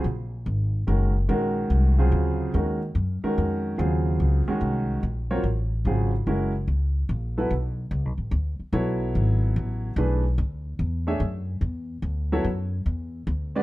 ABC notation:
X:1
M:3/4
L:1/8
Q:"Swing" 1/4=145
K:Ebdor
V:1 name="Upright piano"
z4 [E,A,DGB] z | [E,A,DGB]3 [D,G,CFA]3 | [E,A,DGB] z2 [E,A,DGB]3 | [D,G,CFA]3 [E,A,DGB]3 |
z [G,CFBd] z2 [D,G,CFA] z | [A,D_FGB] z4 [G,_CF=A_c] | [K:Bdor] z6 | [F,B,EAc]4- [F,B,EAc] z |
[E,A,DGB] z4 [A,DGce] | z4 z [F,B,EAc] | z4 z [G,CFBd] |]
V:2 name="Upright bass" clef=bass
B,,,2 A,,,2 G,,,2 | B,,,2 C,,2 =D,,2 | E,,2 G,, z F,,2 | E,,2 D,, z C,,2 |
B,,,2 =A,,,2 _A,,,2 | G,,,2 D,,2 B,,,2 | [K:Bdor] B,,,2 (3C,, B,,, A,,, D,, z | B,,,2 G,,,2 A,,,2 |
B,,,2 D,,2 E,,2 | F,,2 E,,2 D,,2 | F,,2 E,,2 D,,2 |]